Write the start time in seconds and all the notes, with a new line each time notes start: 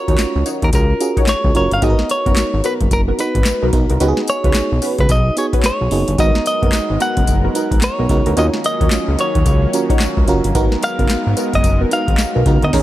Already playing: C#4 F4 F#4 A#4 C#5
0.08 D#2 D#4 F#4 C#5, kick, closed hi-hat
0.18 snare, clap, closed hi-hat, tambourine
0.36 C#2
0.46 D#4 F#4 C#5, closed hi-hat, tambourine
0.62 D#2 A#4, kick, closed hi-hat
0.73 C#2 A#4, kick, closed hi-hat, tambourine
1.00 C#4 F4 F#4 G#4, closed hi-hat, tambourine
1.17 D#4 F#4 C#5, kick, closed hi-hat
1.27 C#5, snare, clap, closed hi-hat, tambourine
1.44 C#2, kick
1.55 F#1 C#4 F4 F#4 A#4 C#5, closed hi-hat
1.71 G1 F5, closed hi-hat
1.82 G#1 B3 D#4 F#4 G#4 A#4 D#5, kick, closed hi-hat, tambourine
1.90 A#4
1.99 snare
2.09 C#5, closed hi-hat, tambourine
2.26 F#1 B3 F#4 A#4, kick, closed hi-hat
2.36 snare, clap, closed hi-hat, tambourine
2.54 G#1
2.64 B3 F#4 A#4 B4, closed hi-hat, tambourine
2.81 F#1, kick, closed hi-hat
2.91 F#1 A#4, kick, closed hi-hat, tambourine
3.08 B3 F#4 A#4
3.19 B3 D#4 F#4 B4, closed hi-hat, tambourine
3.35 G#1, kick, closed hi-hat
3.45 snare, clap, closed hi-hat, tambourine
3.62 B1 B3 F#4 A#4
3.73 B1 B3 D#4 F#4 A#4, kick, closed hi-hat
3.90 C2 B3 F#4 A#4, closed hi-hat
4.00 C#2 B3 C#4 D#4 F#4 G4 B4, closed hi-hat, tambourine
4.08 G#4
4.17 snare
4.27 C#5, closed hi-hat, tambourine
4.44 C#2 C#4 F#4 B4, kick, closed hi-hat
4.54 snare, clap, closed hi-hat, tambourine
4.72 B1
4.82 C#4 F#4 B4, open hi-hat, tambourine
4.98 C#2 B4, kick, closed hi-hat
5.09 B1 D#5, kick, closed hi-hat, tambourine
5.37 B3 D#4 F#4 G#4 C#5, closed hi-hat, tambourine
5.53 C#4 F#4 B4, kick, closed hi-hat
5.63 C#5, snare, clap, closed hi-hat, tambourine
5.81 B1
5.91 F#1 B3 D#4 F#4 G#4, open hi-hat
6.08 G1, closed hi-hat
6.18 G#1 F#3 G#3 B3 D#4 F#4 A#4 D#5, kick, closed hi-hat, tambourine
6.35 snare
6.46 D#5, closed hi-hat, tambourine
6.62 F#1 B3 F#4 A#4, kick, closed hi-hat
6.73 snare, clap, closed hi-hat, tambourine
6.90 G#1
7.00 B3 F#4 A#4 F#5, closed hi-hat, tambourine
7.17 F#1, kick, closed hi-hat
7.27 F#1, kick, closed hi-hat, tambourine
7.44 B3 F#4 A#4
7.55 B3 D#4 F#4 A#4, closed hi-hat, tambourine
7.71 G#1, kick, closed hi-hat
7.82 C#5, snare, clap, closed hi-hat, tambourine
7.99 B1 B3 F#4 A#4
8.09 C#2 B3 D#4 F#4 A#4, kick, closed hi-hat
8.26 D2 B3 F#4 A#4, closed hi-hat
8.37 D#2 D#3 A#3 C#4 D#4 F4 F#4 A#4 C#5 D#5, closed hi-hat, tambourine
8.54 snare
8.64 D#5, closed hi-hat, tambourine
8.81 D#2 D#4 F#4 C#5, kick, closed hi-hat
8.91 snare, clap, closed hi-hat, tambourine
9.08 C#2
9.19 D#4 F#4 C#5, closed hi-hat, tambourine
9.35 D#2, kick, closed hi-hat
9.46 C#2, kick, closed hi-hat, tambourine
9.73 C#4 F4 F#4 A#4, closed hi-hat, tambourine
9.90 D#4 F#4 C#5, kick, closed hi-hat
10.00 snare, clap, closed hi-hat, tambourine
10.17 C#2, kick
10.28 F#1 C#4 F4 F#4 A#4, closed hi-hat
10.44 G1, closed hi-hat
10.55 G#1 G#3 B3 D#4 F#4 A#4, kick, closed hi-hat, tambourine
10.72 snare
10.82 F5, closed hi-hat, tambourine
10.99 F#1 B3 F#4 A#4, kick, closed hi-hat
11.09 snare, clap, closed hi-hat, tambourine
11.27 G#1
11.37 B3 F#4 A#4, closed hi-hat, tambourine
11.54 F#1 D#5, kick, closed hi-hat
11.64 F#1, kick, closed hi-hat, tambourine
11.81 B3 F#4 A#4
11.91 B3 D#4 F#4 A#4 F5, closed hi-hat, tambourine
12.08 G#1, kick, closed hi-hat
12.18 snare, clap, closed hi-hat, tambourine
12.35 B1 B3 F#4 A#4
12.46 C#2 B3 D#4 F#4 A#4, kick, closed hi-hat
12.62 D2 B3 F#4 A#4 D#5, closed hi-hat
12.73 D#2 D#3 A#3 C#4 D#4 G#4 A#4, kick, snare, crash